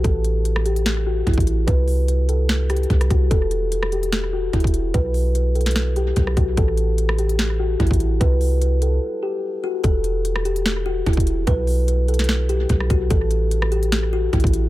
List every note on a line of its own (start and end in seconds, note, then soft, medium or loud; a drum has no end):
0.04 1.23 A1 loud
0.04 0.62 A4 loud
0.04 kick loud
0.04 closed hi-hat medium
0.24 closed hi-hat medium
0.45 closed hi-hat medium
0.56 cross-stick loud
0.66 0.82 G4 medium
0.66 closed hi-hat medium
0.76 closed hi-hat medium
0.86 snare loud
0.86 closed hi-hat medium
1.07 1.23 F#4 medium
1.26 1.37 A1 loud
1.26 1.65 E4 loud
1.26 kick medium
1.26 closed hi-hat soft
1.34 closed hi-hat medium
1.38 1.66 A1 loud
1.38 kick loud
1.38 closed hi-hat medium
1.47 closed hi-hat medium
1.67 2.86 C2 loud
1.67 2.25 B4 loud
1.67 kick loud
1.67 closed hi-hat medium
1.88 open hi-hat medium
2.08 closed hi-hat medium
2.29 2.45 A4 medium
2.29 closed hi-hat medium
2.49 snare loud
2.49 closed hi-hat medium
2.70 3.08 G4 medium
2.70 cross-stick medium
2.70 closed hi-hat medium
2.77 closed hi-hat medium
2.83 closed hi-hat soft
2.90 3.10 C2 loud
2.90 kick medium
2.90 closed hi-hat soft
3.01 cross-stick medium
3.01 closed hi-hat medium
3.10 3.30 C2 loud
3.10 3.27 F#4 medium
3.10 kick medium
3.10 closed hi-hat medium
3.31 4.49 E1 loud
3.31 3.88 A4 loud
3.31 kick loud
3.31 closed hi-hat medium
3.51 closed hi-hat medium
3.72 closed hi-hat medium
3.83 cross-stick loud
3.92 4.09 G4 medium
3.92 closed hi-hat medium
4.03 closed hi-hat medium
4.13 snare loud
4.13 closed hi-hat medium
4.33 4.49 F#4 medium
4.53 4.64 E1 loud
4.53 4.92 E4 loud
4.53 kick medium
4.53 closed hi-hat soft
4.60 4.93 E1 loud
4.60 kick medium
4.60 closed hi-hat medium
4.67 closed hi-hat medium
4.74 closed hi-hat medium
4.94 6.13 B1 loud
4.94 5.52 B4 loud
4.94 kick loud
4.94 closed hi-hat medium
5.14 open hi-hat medium
5.35 closed hi-hat medium
5.55 5.72 A4 medium
5.55 closed hi-hat soft
5.61 closed hi-hat medium
5.66 snare medium
5.66 closed hi-hat medium
5.71 closed hi-hat medium
5.76 snare loud
5.76 closed hi-hat medium
5.96 6.35 G4 medium
5.96 closed hi-hat medium
6.16 6.36 B1 loud
6.16 kick medium
6.16 closed hi-hat medium
6.27 cross-stick medium
6.37 6.57 B1 loud
6.37 6.54 F#4 medium
6.37 kick medium
6.37 closed hi-hat medium
6.57 7.76 A1 loud
6.57 7.15 A4 loud
6.57 kick loud
6.57 closed hi-hat medium
6.77 closed hi-hat medium
6.98 closed hi-hat medium
7.09 cross-stick loud
7.18 7.35 G4 medium
7.18 closed hi-hat medium
7.29 closed hi-hat medium
7.39 snare loud
7.39 closed hi-hat medium
7.60 7.76 F#4 medium
7.80 7.90 A1 loud
7.80 8.18 E4 loud
7.80 kick medium
7.80 closed hi-hat soft
7.87 8.20 A1 loud
7.87 closed hi-hat medium
7.91 kick medium
7.91 closed hi-hat medium
8.00 closed hi-hat medium
8.20 8.99 C2 loud
8.20 8.78 B4 loud
8.20 kick loud
8.20 closed hi-hat medium
8.41 open hi-hat medium
8.62 closed hi-hat medium
8.82 8.99 A4 medium
8.82 closed hi-hat medium
9.23 9.61 G4 medium
9.64 9.80 F#4 medium
9.84 11.02 E1 loud
9.84 10.41 A4 loud
9.84 kick loud
9.84 closed hi-hat medium
10.04 closed hi-hat medium
10.25 closed hi-hat medium
10.36 cross-stick loud
10.45 10.62 G4 medium
10.45 closed hi-hat medium
10.56 closed hi-hat medium
10.66 snare loud
10.66 closed hi-hat medium
10.86 11.02 F#4 medium
11.06 11.17 E1 loud
11.06 11.45 E4 medium
11.06 kick medium
11.06 closed hi-hat soft
11.13 11.46 E1 loud
11.13 kick loud
11.13 closed hi-hat medium
11.20 closed hi-hat medium
11.27 closed hi-hat medium
11.47 12.66 B1 loud
11.47 12.05 B4 loud
11.47 kick loud
11.47 closed hi-hat medium
11.67 open hi-hat medium
11.88 closed hi-hat medium
12.08 12.25 A4 medium
12.08 closed hi-hat soft
12.14 closed hi-hat medium
12.19 snare medium
12.19 closed hi-hat medium
12.24 closed hi-hat medium
12.29 snare loud
12.29 closed hi-hat medium
12.49 12.88 G4 medium
12.49 closed hi-hat medium
12.69 12.89 B1 loud
12.69 kick medium
12.69 closed hi-hat medium
12.80 cross-stick medium
12.90 13.10 B1 loud
12.90 13.07 F#4 medium
12.90 kick medium
12.90 closed hi-hat medium
13.10 14.29 A1 loud
13.10 13.68 A4 loud
13.10 kick loud
13.10 closed hi-hat medium
13.31 closed hi-hat medium
13.51 closed hi-hat medium
13.62 cross-stick loud
13.72 13.88 G4 medium
13.72 closed hi-hat medium
13.83 closed hi-hat medium
13.92 snare loud
13.92 closed hi-hat medium
14.13 14.29 F#4 medium
14.33 14.43 A1 loud
14.33 14.69 E4 loud
14.33 kick medium
14.33 closed hi-hat soft
14.40 14.69 A1 loud
14.40 kick loud
14.40 closed hi-hat medium
14.47 closed hi-hat medium
14.53 closed hi-hat medium